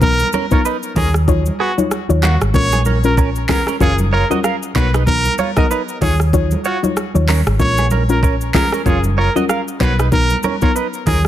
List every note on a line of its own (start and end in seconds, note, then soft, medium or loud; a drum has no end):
0.00 0.22 B1 loud
0.00 0.23 F#3 loud
0.00 0.23 B3 medium
0.00 0.23 D#4 medium
0.00 0.23 A#4 loud
0.00 0.29 A#4 loud
0.00 kick loud
0.00 low conga medium
0.00 shaker medium
0.20 high conga medium
0.20 shaker medium
0.33 0.45 C#4 medium
0.33 0.45 A#4 medium
0.33 high conga medium
0.33 shaker medium
0.51 0.93 F#3 medium
0.51 0.93 B3 medium
0.51 0.93 D#4 medium
0.51 0.60 F4 medium
0.51 0.93 A#4 medium
0.51 0.63 A#4 medium
0.51 0.60 C#5 medium
0.51 kick loud
0.51 shaker soft
0.65 0.77 D#4 medium
0.65 0.76 B4 medium
0.65 shaker medium
0.83 shaker soft
0.96 1.48 D#2 loud
0.96 1.26 F#3 medium
0.96 1.08 C#4 medium
0.96 1.26 D#4 medium
0.96 1.26 F4 medium
0.96 1.12 G#4 medium
0.96 1.08 A#4 medium
0.96 1.26 C#5 medium
0.96 kick medium
0.96 open hi-hat medium
0.96 high conga medium
0.96 low conga medium
0.96 shaker medium
1.14 cross-stick loud
1.14 shaker medium
1.28 1.49 F#3 loud
1.28 1.49 D#4 medium
1.28 1.49 F4 medium
1.28 1.49 C#5 loud
1.28 kick loud
1.28 low conga medium
1.28 shaker medium
1.46 high conga medium
1.46 shaker medium
1.60 1.71 B3 medium
1.60 1.75 F#4 medium
1.60 1.71 G#4 medium
1.78 1.95 F#3 medium
1.78 1.95 D#4 medium
1.78 1.96 F4 medium
1.78 1.96 C#5 medium
1.78 high conga medium
1.78 shaker medium
1.91 cross-stick medium
1.91 shaker medium
2.09 2.35 D#2 loud
2.09 2.27 F#3 medium
2.09 2.27 D#4 medium
2.09 2.27 F4 medium
2.09 2.27 C#5 medium
2.09 shaker soft
2.23 2.34 A#3 medium
2.23 2.34 F#4 medium
2.23 2.39 F#4 medium
2.23 clap loud
2.23 high conga medium
2.23 shaker medium
2.41 2.52 G#1 medium
2.41 cross-stick loud
2.41 shaker medium
2.54 3.45 A#1 loud
2.54 2.75 G#3 medium
2.54 2.76 C#4 medium
2.54 2.76 F4 medium
2.54 2.76 A#4 loud
2.54 2.81 C#5 loud
2.54 kick loud
2.54 low conga medium
2.54 shaker medium
2.72 2.81 B3 medium
2.72 2.81 G#4 medium
2.72 high conga medium
2.72 shaker medium
2.85 2.98 C#4 medium
2.85 2.97 A#4 medium
2.85 high conga medium
2.85 shaker medium
3.04 3.46 G#3 medium
3.04 3.46 C#4 medium
3.04 3.46 F4 medium
3.04 3.46 A#4 medium
3.04 3.16 A#4 medium
3.04 shaker soft
3.17 3.29 C#4 medium
3.17 3.29 A#4 medium
3.17 kick loud
3.17 shaker medium
3.36 shaker soft
3.49 3.78 G#3 medium
3.49 3.61 B3 medium
3.49 3.78 C#4 medium
3.49 3.79 F4 medium
3.49 3.60 G#4 medium
3.49 3.79 A#4 medium
3.49 3.65 A#4 medium
3.49 kick medium
3.49 cross-stick loud
3.49 clap loud
3.49 open hi-hat medium
3.49 high conga medium
3.49 low conga medium
3.49 shaker medium
3.67 3.76 C#4 medium
3.67 3.76 A#4 medium
3.67 cross-stick medium
3.67 shaker medium
3.80 4.22 F#1 loud
3.80 4.02 F#3 loud
3.80 4.02 C#4 medium
3.80 4.02 F4 medium
3.80 3.92 F4 medium
3.80 3.97 G#4 medium
3.80 4.02 A#4 loud
3.80 3.92 C#5 medium
3.80 kick loud
3.80 low conga medium
3.80 shaker medium
3.98 high conga medium
3.98 shaker medium
4.13 4.24 F4 medium
4.13 4.28 A#4 medium
4.13 4.23 C#5 medium
4.30 4.72 F#3 medium
4.30 4.72 C#4 medium
4.30 4.72 F4 medium
4.30 4.39 F#4 medium
4.30 4.72 A#4 medium
4.30 4.39 D#5 medium
4.30 high conga medium
4.30 shaker medium
4.44 4.56 A#4 medium
4.44 4.55 F5 medium
4.44 cross-stick medium
4.44 shaker medium
4.63 shaker medium
4.75 5.27 B1 loud
4.75 5.05 F#3 medium
4.75 5.05 B3 medium
4.75 5.05 D#4 medium
4.75 4.87 F#4 medium
4.75 5.05 A#4 medium
4.75 4.91 B4 medium
4.75 4.86 C#5 medium
4.75 kick loud
4.75 clap loud
4.75 high conga medium
4.75 shaker medium
4.94 5.02 D#4 medium
4.94 5.02 B4 medium
4.94 cross-stick loud
4.94 shaker medium
5.07 5.28 F#3 medium
5.07 5.28 B3 medium
5.07 5.29 D#4 medium
5.07 5.29 A#4 loud
5.07 5.34 A#4 loud
5.07 kick loud
5.07 low conga medium
5.07 shaker medium
5.25 high conga medium
5.25 shaker medium
5.38 5.50 F4 medium
5.38 5.50 C#5 medium
5.38 high conga medium
5.38 shaker medium
5.57 5.98 F#3 medium
5.57 5.99 B3 medium
5.57 5.99 D#4 medium
5.57 5.66 F#4 medium
5.57 5.99 A#4 medium
5.57 5.68 A#4 medium
5.57 5.65 D#5 medium
5.57 kick loud
5.57 cross-stick loud
5.57 shaker soft
5.71 5.82 D#4 medium
5.71 5.81 B4 medium
5.71 shaker medium
5.88 shaker soft
6.01 6.54 D#2 loud
6.01 6.31 F#3 medium
6.01 6.31 D#4 medium
6.01 6.31 F4 medium
6.01 6.14 F4 medium
6.01 6.18 G#4 medium
6.01 6.31 C#5 medium
6.01 6.13 C#5 medium
6.01 kick medium
6.01 open hi-hat medium
6.01 high conga medium
6.01 low conga medium
6.01 shaker medium
6.20 cross-stick medium
6.20 shaker medium
6.33 6.55 F#3 loud
6.33 6.55 D#4 medium
6.33 6.55 F4 medium
6.33 6.55 C#5 loud
6.33 kick medium
6.33 low conga medium
6.33 shaker medium
6.51 high conga medium
6.51 shaker medium
6.64 6.77 F4 medium
6.64 6.81 F#4 medium
6.64 6.76 C#5 medium
6.64 shaker medium
6.83 7.01 F#3 medium
6.83 7.01 D#4 medium
6.83 7.01 F4 medium
6.83 7.01 C#5 medium
6.83 high conga medium
6.83 shaker medium
6.97 cross-stick medium
6.97 shaker medium
7.14 7.41 D#2 medium
7.14 7.32 F#3 medium
7.14 7.32 D#4 medium
7.14 7.32 F4 medium
7.14 7.32 C#5 medium
7.14 high conga medium
7.14 shaker medium
7.28 7.40 C#4 medium
7.28 7.39 A#4 medium
7.28 clap loud
7.28 open hi-hat medium
7.28 high conga medium
7.28 shaker medium
7.46 7.57 G#1 medium
7.46 cross-stick loud
7.46 shaker medium
7.59 8.50 A#1 loud
7.59 7.81 G#3 medium
7.59 7.81 C#4 medium
7.59 7.81 F4 medium
7.59 7.81 A#4 loud
7.59 7.87 C#5 loud
7.59 kick loud
7.59 low conga medium
7.59 shaker medium
7.78 7.87 B3 medium
7.78 7.86 G#4 medium
7.78 high conga medium
7.78 shaker medium
7.91 8.03 C#4 medium
7.91 8.02 A#4 medium
7.91 high conga medium
7.91 shaker medium
8.09 8.51 G#3 medium
8.09 8.51 C#4 medium
8.09 8.51 F4 medium
8.09 8.51 A#4 medium
8.09 8.21 A#4 medium
8.09 shaker soft
8.23 8.34 C#4 medium
8.23 8.34 A#4 medium
8.23 kick loud
8.23 shaker medium
8.41 shaker soft
8.54 8.84 G#3 medium
8.54 8.66 B3 medium
8.54 8.84 C#4 medium
8.54 8.84 F4 medium
8.54 8.65 G#4 medium
8.54 8.84 A#4 medium
8.54 8.70 A#4 medium
8.54 kick loud
8.54 cross-stick loud
8.54 clap loud
8.54 open hi-hat medium
8.54 high conga medium
8.54 low conga medium
8.54 shaker medium
8.72 8.81 C#4 medium
8.72 8.81 A#4 medium
8.72 cross-stick medium
8.72 shaker medium
8.86 9.27 F#1 loud
8.86 9.07 F#3 medium
8.86 9.07 C#4 medium
8.86 9.07 F4 medium
8.86 8.98 F4 medium
8.86 9.02 G#4 medium
8.86 9.07 A#4 loud
8.86 8.97 C#5 medium
8.86 kick loud
8.86 low conga medium
8.86 shaker medium
9.04 high conga medium
9.04 shaker medium
9.18 9.29 F4 medium
9.18 9.33 A#4 medium
9.18 9.29 C#5 medium
9.35 9.77 F#3 medium
9.35 9.77 C#4 medium
9.35 9.77 F4 medium
9.35 9.44 F#4 medium
9.35 9.78 A#4 medium
9.35 9.44 D#5 medium
9.35 high conga medium
9.35 shaker medium
9.49 9.61 A#4 medium
9.49 9.60 F5 medium
9.49 cross-stick medium
9.49 shaker medium
9.68 shaker medium
9.80 10.33 B1 loud
9.80 10.10 F#3 medium
9.80 10.10 B3 medium
9.80 10.10 D#4 medium
9.80 9.92 F#4 medium
9.80 10.10 A#4 medium
9.80 9.96 B4 medium
9.80 9.92 C#5 medium
9.80 kick loud
9.80 clap loud
9.80 high conga medium
9.80 shaker medium
9.99 10.08 D#4 medium
9.99 10.07 B4 medium
9.99 cross-stick loud
9.99 shaker medium
10.12 10.33 F#3 medium
10.12 10.34 B3 medium
10.12 10.34 D#4 medium
10.12 10.34 A#4 loud
10.12 10.39 A#4 loud
10.12 kick loud
10.12 low conga medium
10.12 shaker medium
10.30 high conga medium
10.30 shaker medium
10.43 10.56 C#4 medium
10.43 10.55 A#4 medium
10.43 high conga medium
10.43 shaker medium
10.62 11.04 F#3 medium
10.62 11.04 B3 medium
10.62 11.04 D#4 medium
10.62 10.71 F4 medium
10.62 10.73 A#4 medium
10.62 11.04 A#4 medium
10.62 10.70 C#5 medium
10.62 kick loud
10.62 shaker soft
10.76 10.87 D#4 medium
10.76 10.86 B4 medium
10.76 shaker medium
10.93 shaker soft
11.07 11.28 D#2 loud
11.07 11.28 F#3 medium
11.07 11.19 C#4 medium
11.07 11.28 D#4 medium
11.07 11.28 F4 medium
11.07 11.23 G#4 medium
11.07 11.18 A#4 medium
11.07 11.28 C#5 medium
11.07 kick medium
11.07 open hi-hat medium
11.07 high conga medium
11.07 low conga medium
11.07 shaker medium
11.25 cross-stick loud